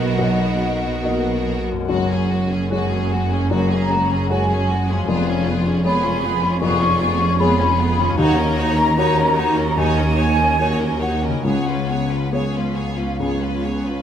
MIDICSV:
0, 0, Header, 1, 10, 480
1, 0, Start_track
1, 0, Tempo, 849858
1, 1066, Time_signature, 4, 2, 24, 8
1, 1066, Tempo, 813008
1, 2026, Tempo, 779221
1, 4906, Tempo, 797872
1, 5866, Tempo, 835655
1, 6826, Tempo, 873362
1, 8235, End_track
2, 0, Start_track
2, 0, Title_t, "Flute section"
2, 0, Program_c, 0, 73
2, 0, Note_on_c, 0, 75, 67
2, 837, Note_off_c, 0, 75, 0
2, 1552, Note_on_c, 0, 80, 69
2, 2004, Note_off_c, 0, 80, 0
2, 2027, Note_on_c, 0, 82, 81
2, 2512, Note_off_c, 0, 82, 0
2, 2517, Note_on_c, 0, 80, 68
2, 2996, Note_off_c, 0, 80, 0
2, 3470, Note_on_c, 0, 83, 92
2, 3922, Note_off_c, 0, 83, 0
2, 3944, Note_on_c, 0, 85, 93
2, 4421, Note_on_c, 0, 83, 86
2, 4423, Note_off_c, 0, 85, 0
2, 4904, Note_off_c, 0, 83, 0
2, 4908, Note_on_c, 0, 82, 100
2, 5847, Note_off_c, 0, 82, 0
2, 5864, Note_on_c, 0, 80, 107
2, 6569, Note_on_c, 0, 78, 70
2, 6576, Note_off_c, 0, 80, 0
2, 6693, Note_off_c, 0, 78, 0
2, 6698, Note_on_c, 0, 80, 63
2, 6813, Note_on_c, 0, 78, 66
2, 6824, Note_off_c, 0, 80, 0
2, 7301, Note_off_c, 0, 78, 0
2, 7303, Note_on_c, 0, 77, 51
2, 8235, Note_off_c, 0, 77, 0
2, 8235, End_track
3, 0, Start_track
3, 0, Title_t, "Violin section"
3, 0, Program_c, 1, 48
3, 0, Note_on_c, 1, 70, 57
3, 926, Note_off_c, 1, 70, 0
3, 1068, Note_on_c, 1, 66, 48
3, 1180, Note_off_c, 1, 66, 0
3, 1193, Note_on_c, 1, 68, 47
3, 1311, Note_off_c, 1, 68, 0
3, 1317, Note_on_c, 1, 66, 46
3, 1433, Note_off_c, 1, 66, 0
3, 1434, Note_on_c, 1, 68, 42
3, 1551, Note_off_c, 1, 68, 0
3, 1557, Note_on_c, 1, 66, 48
3, 1665, Note_off_c, 1, 66, 0
3, 1670, Note_on_c, 1, 68, 42
3, 1789, Note_off_c, 1, 68, 0
3, 1789, Note_on_c, 1, 66, 40
3, 1908, Note_off_c, 1, 66, 0
3, 1908, Note_on_c, 1, 68, 42
3, 2024, Note_on_c, 1, 66, 42
3, 2026, Note_off_c, 1, 68, 0
3, 2138, Note_off_c, 1, 66, 0
3, 2149, Note_on_c, 1, 68, 47
3, 2270, Note_off_c, 1, 68, 0
3, 2273, Note_on_c, 1, 66, 43
3, 2390, Note_on_c, 1, 68, 49
3, 2392, Note_off_c, 1, 66, 0
3, 2511, Note_off_c, 1, 68, 0
3, 2518, Note_on_c, 1, 66, 46
3, 2627, Note_off_c, 1, 66, 0
3, 2644, Note_on_c, 1, 68, 45
3, 2759, Note_off_c, 1, 68, 0
3, 2761, Note_on_c, 1, 66, 41
3, 2877, Note_off_c, 1, 66, 0
3, 2884, Note_on_c, 1, 68, 46
3, 2996, Note_on_c, 1, 65, 56
3, 2998, Note_off_c, 1, 68, 0
3, 3105, Note_off_c, 1, 65, 0
3, 3107, Note_on_c, 1, 68, 55
3, 3224, Note_on_c, 1, 65, 55
3, 3228, Note_off_c, 1, 68, 0
3, 3344, Note_on_c, 1, 68, 49
3, 3345, Note_off_c, 1, 65, 0
3, 3462, Note_on_c, 1, 65, 51
3, 3465, Note_off_c, 1, 68, 0
3, 3575, Note_off_c, 1, 65, 0
3, 3580, Note_on_c, 1, 68, 45
3, 3699, Note_on_c, 1, 65, 42
3, 3703, Note_off_c, 1, 68, 0
3, 3817, Note_on_c, 1, 68, 45
3, 3822, Note_off_c, 1, 65, 0
3, 3940, Note_off_c, 1, 68, 0
3, 3940, Note_on_c, 1, 65, 58
3, 4053, Note_off_c, 1, 65, 0
3, 4062, Note_on_c, 1, 68, 57
3, 4179, Note_on_c, 1, 65, 54
3, 4182, Note_off_c, 1, 68, 0
3, 4295, Note_on_c, 1, 68, 59
3, 4301, Note_off_c, 1, 65, 0
3, 4412, Note_on_c, 1, 65, 54
3, 4419, Note_off_c, 1, 68, 0
3, 4530, Note_off_c, 1, 65, 0
3, 4537, Note_on_c, 1, 68, 53
3, 4661, Note_off_c, 1, 68, 0
3, 4663, Note_on_c, 1, 65, 52
3, 4783, Note_on_c, 1, 68, 55
3, 4784, Note_off_c, 1, 65, 0
3, 4904, Note_off_c, 1, 68, 0
3, 4907, Note_on_c, 1, 73, 62
3, 5015, Note_off_c, 1, 73, 0
3, 5026, Note_on_c, 1, 70, 58
3, 5143, Note_off_c, 1, 70, 0
3, 5147, Note_on_c, 1, 73, 62
3, 5262, Note_on_c, 1, 70, 56
3, 5263, Note_off_c, 1, 73, 0
3, 5381, Note_off_c, 1, 70, 0
3, 5384, Note_on_c, 1, 73, 54
3, 5494, Note_off_c, 1, 73, 0
3, 5500, Note_on_c, 1, 70, 47
3, 5621, Note_off_c, 1, 70, 0
3, 5624, Note_on_c, 1, 73, 49
3, 5743, Note_on_c, 1, 70, 49
3, 5744, Note_off_c, 1, 73, 0
3, 5863, Note_on_c, 1, 73, 59
3, 5865, Note_off_c, 1, 70, 0
3, 5972, Note_off_c, 1, 73, 0
3, 5981, Note_on_c, 1, 70, 57
3, 6093, Note_on_c, 1, 73, 49
3, 6098, Note_off_c, 1, 70, 0
3, 6213, Note_off_c, 1, 73, 0
3, 6215, Note_on_c, 1, 70, 47
3, 6334, Note_off_c, 1, 70, 0
3, 6334, Note_on_c, 1, 73, 50
3, 6446, Note_off_c, 1, 73, 0
3, 6454, Note_on_c, 1, 70, 46
3, 6576, Note_off_c, 1, 70, 0
3, 6576, Note_on_c, 1, 73, 42
3, 6699, Note_on_c, 1, 70, 44
3, 6700, Note_off_c, 1, 73, 0
3, 6825, Note_off_c, 1, 70, 0
3, 6826, Note_on_c, 1, 73, 44
3, 6938, Note_off_c, 1, 73, 0
3, 6948, Note_on_c, 1, 71, 41
3, 7066, Note_on_c, 1, 73, 44
3, 7068, Note_off_c, 1, 71, 0
3, 7187, Note_off_c, 1, 73, 0
3, 7191, Note_on_c, 1, 71, 38
3, 7309, Note_off_c, 1, 71, 0
3, 7309, Note_on_c, 1, 73, 41
3, 7419, Note_off_c, 1, 73, 0
3, 7427, Note_on_c, 1, 71, 35
3, 7546, Note_off_c, 1, 71, 0
3, 7546, Note_on_c, 1, 73, 37
3, 7665, Note_on_c, 1, 71, 33
3, 7667, Note_off_c, 1, 73, 0
3, 7785, Note_on_c, 1, 73, 35
3, 7787, Note_off_c, 1, 71, 0
3, 7898, Note_off_c, 1, 73, 0
3, 7904, Note_on_c, 1, 71, 40
3, 8020, Note_on_c, 1, 73, 34
3, 8026, Note_off_c, 1, 71, 0
3, 8143, Note_off_c, 1, 73, 0
3, 8144, Note_on_c, 1, 71, 34
3, 8235, Note_off_c, 1, 71, 0
3, 8235, End_track
4, 0, Start_track
4, 0, Title_t, "Violin section"
4, 0, Program_c, 2, 48
4, 0, Note_on_c, 2, 66, 58
4, 929, Note_off_c, 2, 66, 0
4, 1066, Note_on_c, 2, 66, 56
4, 1179, Note_off_c, 2, 66, 0
4, 1192, Note_on_c, 2, 68, 47
4, 1309, Note_on_c, 2, 66, 42
4, 1311, Note_off_c, 2, 68, 0
4, 1429, Note_off_c, 2, 66, 0
4, 1433, Note_on_c, 2, 68, 42
4, 1551, Note_off_c, 2, 68, 0
4, 1551, Note_on_c, 2, 66, 51
4, 1661, Note_off_c, 2, 66, 0
4, 1663, Note_on_c, 2, 68, 43
4, 1786, Note_off_c, 2, 68, 0
4, 1786, Note_on_c, 2, 66, 44
4, 1907, Note_off_c, 2, 66, 0
4, 1908, Note_on_c, 2, 68, 45
4, 2023, Note_on_c, 2, 66, 51
4, 2026, Note_off_c, 2, 68, 0
4, 2137, Note_off_c, 2, 66, 0
4, 2149, Note_on_c, 2, 68, 45
4, 2270, Note_off_c, 2, 68, 0
4, 2270, Note_on_c, 2, 66, 42
4, 2382, Note_on_c, 2, 68, 43
4, 2390, Note_off_c, 2, 66, 0
4, 2502, Note_on_c, 2, 66, 47
4, 2507, Note_off_c, 2, 68, 0
4, 2619, Note_off_c, 2, 66, 0
4, 2626, Note_on_c, 2, 68, 44
4, 2748, Note_on_c, 2, 66, 49
4, 2750, Note_off_c, 2, 68, 0
4, 2863, Note_on_c, 2, 68, 44
4, 2871, Note_off_c, 2, 66, 0
4, 2979, Note_off_c, 2, 68, 0
4, 2986, Note_on_c, 2, 68, 54
4, 3100, Note_off_c, 2, 68, 0
4, 3102, Note_on_c, 2, 65, 53
4, 3219, Note_on_c, 2, 68, 51
4, 3225, Note_off_c, 2, 65, 0
4, 3343, Note_off_c, 2, 68, 0
4, 3343, Note_on_c, 2, 65, 50
4, 3465, Note_off_c, 2, 65, 0
4, 3467, Note_on_c, 2, 68, 60
4, 3578, Note_off_c, 2, 68, 0
4, 3583, Note_on_c, 2, 65, 50
4, 3700, Note_on_c, 2, 68, 54
4, 3705, Note_off_c, 2, 65, 0
4, 3823, Note_off_c, 2, 68, 0
4, 3825, Note_on_c, 2, 65, 49
4, 3937, Note_on_c, 2, 68, 55
4, 3945, Note_off_c, 2, 65, 0
4, 4052, Note_off_c, 2, 68, 0
4, 4054, Note_on_c, 2, 65, 51
4, 4174, Note_on_c, 2, 68, 54
4, 4178, Note_off_c, 2, 65, 0
4, 4298, Note_off_c, 2, 68, 0
4, 4298, Note_on_c, 2, 65, 54
4, 4421, Note_off_c, 2, 65, 0
4, 4422, Note_on_c, 2, 68, 54
4, 4535, Note_off_c, 2, 68, 0
4, 4542, Note_on_c, 2, 65, 48
4, 4663, Note_off_c, 2, 65, 0
4, 4665, Note_on_c, 2, 68, 51
4, 4785, Note_off_c, 2, 68, 0
4, 4786, Note_on_c, 2, 65, 49
4, 4905, Note_off_c, 2, 65, 0
4, 4905, Note_on_c, 2, 66, 69
4, 5014, Note_off_c, 2, 66, 0
4, 5023, Note_on_c, 2, 63, 60
4, 5139, Note_on_c, 2, 66, 62
4, 5141, Note_off_c, 2, 63, 0
4, 5258, Note_on_c, 2, 63, 53
4, 5259, Note_off_c, 2, 66, 0
4, 5379, Note_off_c, 2, 63, 0
4, 5379, Note_on_c, 2, 66, 58
4, 5491, Note_off_c, 2, 66, 0
4, 5500, Note_on_c, 2, 63, 51
4, 5622, Note_off_c, 2, 63, 0
4, 5624, Note_on_c, 2, 66, 54
4, 5740, Note_on_c, 2, 63, 47
4, 5744, Note_off_c, 2, 66, 0
4, 5863, Note_off_c, 2, 63, 0
4, 5863, Note_on_c, 2, 66, 51
4, 5972, Note_off_c, 2, 66, 0
4, 5979, Note_on_c, 2, 63, 48
4, 6096, Note_on_c, 2, 66, 43
4, 6097, Note_off_c, 2, 63, 0
4, 6213, Note_on_c, 2, 63, 47
4, 6215, Note_off_c, 2, 66, 0
4, 6334, Note_off_c, 2, 63, 0
4, 6337, Note_on_c, 2, 66, 45
4, 6448, Note_off_c, 2, 66, 0
4, 6456, Note_on_c, 2, 63, 45
4, 6577, Note_off_c, 2, 63, 0
4, 6585, Note_on_c, 2, 66, 42
4, 6704, Note_off_c, 2, 66, 0
4, 6705, Note_on_c, 2, 63, 36
4, 6824, Note_on_c, 2, 68, 48
4, 6828, Note_off_c, 2, 63, 0
4, 6937, Note_off_c, 2, 68, 0
4, 6953, Note_on_c, 2, 65, 43
4, 7067, Note_on_c, 2, 68, 37
4, 7070, Note_off_c, 2, 65, 0
4, 7187, Note_off_c, 2, 68, 0
4, 7187, Note_on_c, 2, 65, 36
4, 7304, Note_on_c, 2, 68, 41
4, 7307, Note_off_c, 2, 65, 0
4, 7416, Note_off_c, 2, 68, 0
4, 7430, Note_on_c, 2, 65, 35
4, 7541, Note_on_c, 2, 68, 40
4, 7548, Note_off_c, 2, 65, 0
4, 7664, Note_off_c, 2, 68, 0
4, 7664, Note_on_c, 2, 65, 35
4, 7786, Note_off_c, 2, 65, 0
4, 7789, Note_on_c, 2, 68, 36
4, 7900, Note_off_c, 2, 68, 0
4, 7905, Note_on_c, 2, 65, 33
4, 8026, Note_off_c, 2, 65, 0
4, 8027, Note_on_c, 2, 68, 33
4, 8142, Note_on_c, 2, 65, 36
4, 8147, Note_off_c, 2, 68, 0
4, 8235, Note_off_c, 2, 65, 0
4, 8235, End_track
5, 0, Start_track
5, 0, Title_t, "Viola section"
5, 0, Program_c, 3, 48
5, 0, Note_on_c, 3, 59, 62
5, 929, Note_off_c, 3, 59, 0
5, 1066, Note_on_c, 3, 56, 48
5, 1179, Note_off_c, 3, 56, 0
5, 1191, Note_on_c, 3, 61, 47
5, 1310, Note_off_c, 3, 61, 0
5, 1311, Note_on_c, 3, 56, 44
5, 1430, Note_off_c, 3, 56, 0
5, 1434, Note_on_c, 3, 61, 51
5, 1551, Note_off_c, 3, 61, 0
5, 1558, Note_on_c, 3, 56, 51
5, 1665, Note_off_c, 3, 56, 0
5, 1674, Note_on_c, 3, 61, 43
5, 1791, Note_off_c, 3, 61, 0
5, 1792, Note_on_c, 3, 56, 51
5, 1909, Note_off_c, 3, 56, 0
5, 1914, Note_on_c, 3, 61, 49
5, 2029, Note_off_c, 3, 61, 0
5, 2033, Note_on_c, 3, 56, 53
5, 2143, Note_off_c, 3, 56, 0
5, 2156, Note_on_c, 3, 61, 42
5, 2273, Note_off_c, 3, 61, 0
5, 2277, Note_on_c, 3, 56, 48
5, 2394, Note_off_c, 3, 56, 0
5, 2401, Note_on_c, 3, 61, 44
5, 2516, Note_off_c, 3, 61, 0
5, 2522, Note_on_c, 3, 56, 50
5, 2630, Note_off_c, 3, 56, 0
5, 2645, Note_on_c, 3, 61, 47
5, 2760, Note_off_c, 3, 61, 0
5, 2768, Note_on_c, 3, 56, 54
5, 2881, Note_off_c, 3, 56, 0
5, 2887, Note_on_c, 3, 61, 48
5, 3000, Note_off_c, 3, 61, 0
5, 3007, Note_on_c, 3, 59, 53
5, 3111, Note_off_c, 3, 59, 0
5, 3115, Note_on_c, 3, 61, 52
5, 3232, Note_off_c, 3, 61, 0
5, 3235, Note_on_c, 3, 59, 50
5, 3351, Note_off_c, 3, 59, 0
5, 3351, Note_on_c, 3, 61, 52
5, 3467, Note_on_c, 3, 59, 51
5, 3468, Note_off_c, 3, 61, 0
5, 3578, Note_off_c, 3, 59, 0
5, 3579, Note_on_c, 3, 61, 53
5, 3703, Note_off_c, 3, 61, 0
5, 3710, Note_on_c, 3, 59, 59
5, 3821, Note_on_c, 3, 61, 51
5, 3828, Note_off_c, 3, 59, 0
5, 3939, Note_on_c, 3, 59, 67
5, 3942, Note_off_c, 3, 61, 0
5, 4052, Note_off_c, 3, 59, 0
5, 4065, Note_on_c, 3, 61, 54
5, 4180, Note_on_c, 3, 59, 55
5, 4184, Note_off_c, 3, 61, 0
5, 4301, Note_off_c, 3, 59, 0
5, 4308, Note_on_c, 3, 61, 51
5, 4426, Note_off_c, 3, 61, 0
5, 4428, Note_on_c, 3, 59, 65
5, 4538, Note_off_c, 3, 59, 0
5, 4545, Note_on_c, 3, 61, 55
5, 4665, Note_off_c, 3, 61, 0
5, 4666, Note_on_c, 3, 59, 55
5, 4781, Note_on_c, 3, 61, 57
5, 4786, Note_off_c, 3, 59, 0
5, 4897, Note_on_c, 3, 63, 66
5, 4903, Note_off_c, 3, 61, 0
5, 5010, Note_off_c, 3, 63, 0
5, 5022, Note_on_c, 3, 61, 62
5, 5134, Note_on_c, 3, 63, 61
5, 5140, Note_off_c, 3, 61, 0
5, 5250, Note_on_c, 3, 61, 54
5, 5256, Note_off_c, 3, 63, 0
5, 5372, Note_on_c, 3, 63, 58
5, 5375, Note_off_c, 3, 61, 0
5, 5488, Note_off_c, 3, 63, 0
5, 5499, Note_on_c, 3, 61, 50
5, 5617, Note_on_c, 3, 63, 59
5, 5621, Note_off_c, 3, 61, 0
5, 5739, Note_on_c, 3, 61, 52
5, 5741, Note_off_c, 3, 63, 0
5, 5862, Note_on_c, 3, 63, 65
5, 5863, Note_off_c, 3, 61, 0
5, 5971, Note_off_c, 3, 63, 0
5, 5975, Note_on_c, 3, 61, 53
5, 6095, Note_off_c, 3, 61, 0
5, 6095, Note_on_c, 3, 63, 49
5, 6213, Note_on_c, 3, 61, 52
5, 6215, Note_off_c, 3, 63, 0
5, 6332, Note_on_c, 3, 63, 51
5, 6333, Note_off_c, 3, 61, 0
5, 6445, Note_off_c, 3, 63, 0
5, 6452, Note_on_c, 3, 61, 45
5, 6575, Note_off_c, 3, 61, 0
5, 6575, Note_on_c, 3, 63, 40
5, 6698, Note_on_c, 3, 61, 39
5, 6699, Note_off_c, 3, 63, 0
5, 6821, Note_on_c, 3, 59, 41
5, 6824, Note_off_c, 3, 61, 0
5, 6935, Note_off_c, 3, 59, 0
5, 6947, Note_on_c, 3, 61, 44
5, 7067, Note_off_c, 3, 61, 0
5, 7069, Note_on_c, 3, 59, 39
5, 7184, Note_on_c, 3, 61, 34
5, 7188, Note_off_c, 3, 59, 0
5, 7304, Note_on_c, 3, 59, 37
5, 7305, Note_off_c, 3, 61, 0
5, 7417, Note_off_c, 3, 59, 0
5, 7427, Note_on_c, 3, 61, 37
5, 7546, Note_off_c, 3, 61, 0
5, 7550, Note_on_c, 3, 59, 36
5, 7668, Note_off_c, 3, 59, 0
5, 7670, Note_on_c, 3, 61, 33
5, 7789, Note_off_c, 3, 61, 0
5, 7792, Note_on_c, 3, 59, 40
5, 7902, Note_off_c, 3, 59, 0
5, 7914, Note_on_c, 3, 61, 35
5, 8030, Note_on_c, 3, 59, 36
5, 8031, Note_off_c, 3, 61, 0
5, 8148, Note_off_c, 3, 59, 0
5, 8152, Note_on_c, 3, 61, 34
5, 8235, Note_off_c, 3, 61, 0
5, 8235, End_track
6, 0, Start_track
6, 0, Title_t, "Harp"
6, 0, Program_c, 4, 46
6, 0, Note_on_c, 4, 47, 47
6, 0, Note_on_c, 4, 58, 43
6, 0, Note_on_c, 4, 63, 43
6, 0, Note_on_c, 4, 66, 43
6, 968, Note_on_c, 4, 42, 49
6, 993, Note_on_c, 4, 56, 43
6, 1018, Note_on_c, 4, 61, 43
6, 1037, Note_off_c, 4, 47, 0
6, 1037, Note_off_c, 4, 66, 0
6, 1044, Note_on_c, 4, 66, 40
6, 1049, Note_off_c, 4, 58, 0
6, 1061, Note_off_c, 4, 63, 0
6, 2885, Note_on_c, 4, 41, 49
6, 2906, Note_off_c, 4, 56, 0
6, 2913, Note_on_c, 4, 56, 42
6, 2932, Note_off_c, 4, 61, 0
6, 2939, Note_on_c, 4, 61, 43
6, 2959, Note_off_c, 4, 42, 0
6, 2970, Note_on_c, 4, 68, 46
6, 3000, Note_off_c, 4, 66, 0
6, 4790, Note_on_c, 4, 51, 59
6, 4816, Note_on_c, 4, 58, 51
6, 4838, Note_off_c, 4, 61, 0
6, 4845, Note_on_c, 4, 61, 56
6, 4870, Note_off_c, 4, 41, 0
6, 4874, Note_on_c, 4, 66, 49
6, 4884, Note_off_c, 4, 56, 0
6, 4912, Note_off_c, 4, 68, 0
6, 6719, Note_on_c, 4, 49, 41
6, 6744, Note_on_c, 4, 59, 36
6, 6762, Note_off_c, 4, 61, 0
6, 6769, Note_on_c, 4, 61, 34
6, 6792, Note_off_c, 4, 51, 0
6, 6795, Note_on_c, 4, 68, 32
6, 6804, Note_off_c, 4, 58, 0
6, 6831, Note_off_c, 4, 66, 0
6, 8235, Note_off_c, 4, 49, 0
6, 8235, Note_off_c, 4, 59, 0
6, 8235, Note_off_c, 4, 61, 0
6, 8235, Note_off_c, 4, 68, 0
6, 8235, End_track
7, 0, Start_track
7, 0, Title_t, "Felt piano"
7, 0, Program_c, 5, 0
7, 0, Control_c, 5, 64, 127
7, 0, Note_on_c, 5, 35, 47
7, 0, Note_on_c, 5, 47, 44
7, 0, Note_on_c, 5, 58, 42
7, 0, Note_on_c, 5, 66, 38
7, 0, Note_on_c, 5, 75, 41
7, 83, Note_off_c, 5, 47, 0
7, 84, Note_off_c, 5, 35, 0
7, 85, Note_off_c, 5, 58, 0
7, 85, Note_off_c, 5, 66, 0
7, 86, Note_off_c, 5, 75, 0
7, 104, Note_on_c, 5, 35, 44
7, 105, Note_on_c, 5, 47, 49
7, 588, Note_on_c, 5, 58, 31
7, 592, Note_on_c, 5, 66, 30
7, 594, Note_on_c, 5, 75, 38
7, 1043, Note_off_c, 5, 35, 0
7, 1043, Note_off_c, 5, 47, 0
7, 1043, Note_off_c, 5, 58, 0
7, 1045, Note_off_c, 5, 66, 0
7, 1046, Note_off_c, 5, 75, 0
7, 1068, Note_on_c, 5, 30, 41
7, 1068, Note_on_c, 5, 42, 48
7, 1078, Control_c, 5, 64, 0
7, 1182, Control_c, 5, 64, 127
7, 1547, Note_on_c, 5, 56, 44
7, 1550, Note_on_c, 5, 66, 41
7, 1551, Note_on_c, 5, 73, 45
7, 2001, Note_off_c, 5, 56, 0
7, 2003, Note_off_c, 5, 30, 0
7, 2003, Note_off_c, 5, 42, 0
7, 2003, Note_off_c, 5, 66, 0
7, 2004, Note_off_c, 5, 73, 0
7, 2024, Note_on_c, 5, 42, 51
7, 2025, Note_on_c, 5, 30, 50
7, 2509, Note_on_c, 5, 56, 41
7, 2511, Note_on_c, 5, 66, 43
7, 2515, Note_on_c, 5, 73, 46
7, 2967, Note_off_c, 5, 56, 0
7, 2968, Note_off_c, 5, 30, 0
7, 2968, Note_off_c, 5, 42, 0
7, 2968, Note_off_c, 5, 66, 0
7, 2970, Note_off_c, 5, 73, 0
7, 2994, Note_on_c, 5, 29, 47
7, 2995, Note_on_c, 5, 41, 56
7, 3003, Control_c, 5, 64, 0
7, 3105, Control_c, 5, 64, 127
7, 3461, Note_on_c, 5, 56, 45
7, 3463, Note_on_c, 5, 68, 45
7, 3466, Note_on_c, 5, 73, 52
7, 3917, Note_off_c, 5, 56, 0
7, 3919, Note_off_c, 5, 68, 0
7, 3920, Note_off_c, 5, 73, 0
7, 3921, Note_off_c, 5, 29, 0
7, 3921, Note_off_c, 5, 41, 0
7, 3938, Note_on_c, 5, 29, 60
7, 3939, Note_on_c, 5, 41, 62
7, 4421, Note_on_c, 5, 56, 43
7, 4422, Note_on_c, 5, 68, 43
7, 4422, Note_on_c, 5, 73, 45
7, 4877, Note_off_c, 5, 29, 0
7, 4877, Note_off_c, 5, 41, 0
7, 4879, Note_off_c, 5, 56, 0
7, 4879, Note_off_c, 5, 68, 0
7, 4880, Note_off_c, 5, 73, 0
7, 4900, Note_on_c, 5, 39, 63
7, 4901, Note_on_c, 5, 51, 53
7, 4916, Control_c, 5, 64, 0
7, 5017, Control_c, 5, 64, 127
7, 5378, Note_on_c, 5, 58, 48
7, 5379, Note_on_c, 5, 66, 48
7, 5380, Note_on_c, 5, 73, 56
7, 5838, Note_off_c, 5, 39, 0
7, 5839, Note_off_c, 5, 51, 0
7, 5839, Note_off_c, 5, 58, 0
7, 5840, Note_off_c, 5, 66, 0
7, 5841, Note_off_c, 5, 73, 0
7, 5857, Note_on_c, 5, 39, 58
7, 5858, Note_on_c, 5, 51, 60
7, 6330, Note_on_c, 5, 58, 41
7, 6333, Note_on_c, 5, 66, 39
7, 6336, Note_on_c, 5, 73, 43
7, 6799, Note_off_c, 5, 39, 0
7, 6799, Note_off_c, 5, 51, 0
7, 6800, Note_off_c, 5, 58, 0
7, 6801, Note_off_c, 5, 66, 0
7, 6803, Note_off_c, 5, 73, 0
7, 6819, Note_on_c, 5, 37, 41
7, 6821, Note_on_c, 5, 49, 43
7, 6835, Control_c, 5, 64, 0
7, 6921, Control_c, 5, 64, 127
7, 7304, Note_on_c, 5, 59, 32
7, 7305, Note_on_c, 5, 68, 34
7, 7308, Note_on_c, 5, 73, 37
7, 7763, Note_off_c, 5, 37, 0
7, 7763, Note_off_c, 5, 49, 0
7, 7764, Note_off_c, 5, 59, 0
7, 7764, Note_off_c, 5, 68, 0
7, 7766, Note_off_c, 5, 73, 0
7, 7784, Note_on_c, 5, 37, 40
7, 7784, Note_on_c, 5, 49, 41
7, 8235, Note_off_c, 5, 37, 0
7, 8235, Note_off_c, 5, 49, 0
7, 8235, End_track
8, 0, Start_track
8, 0, Title_t, "Timpani"
8, 0, Program_c, 6, 47
8, 4905, Note_on_c, 6, 51, 78
8, 5598, Note_off_c, 6, 51, 0
8, 8235, End_track
9, 0, Start_track
9, 0, Title_t, "Cello section"
9, 0, Program_c, 7, 48
9, 0, Note_on_c, 7, 47, 66
9, 929, Note_off_c, 7, 47, 0
9, 1070, Note_on_c, 7, 42, 69
9, 2970, Note_off_c, 7, 42, 0
9, 2993, Note_on_c, 7, 41, 69
9, 4880, Note_off_c, 7, 41, 0
9, 4898, Note_on_c, 7, 39, 83
9, 6799, Note_off_c, 7, 39, 0
9, 6823, Note_on_c, 7, 37, 53
9, 8235, Note_off_c, 7, 37, 0
9, 8235, End_track
10, 0, Start_track
10, 0, Title_t, "Double bass section"
10, 0, Program_c, 8, 48
10, 0, Note_on_c, 8, 35, 60
10, 929, Note_off_c, 8, 35, 0
10, 1067, Note_on_c, 8, 30, 56
10, 2969, Note_off_c, 8, 30, 0
10, 2990, Note_on_c, 8, 29, 58
10, 4879, Note_off_c, 8, 29, 0
10, 4899, Note_on_c, 8, 39, 61
10, 6799, Note_off_c, 8, 39, 0
10, 6819, Note_on_c, 8, 37, 43
10, 8235, Note_off_c, 8, 37, 0
10, 8235, End_track
0, 0, End_of_file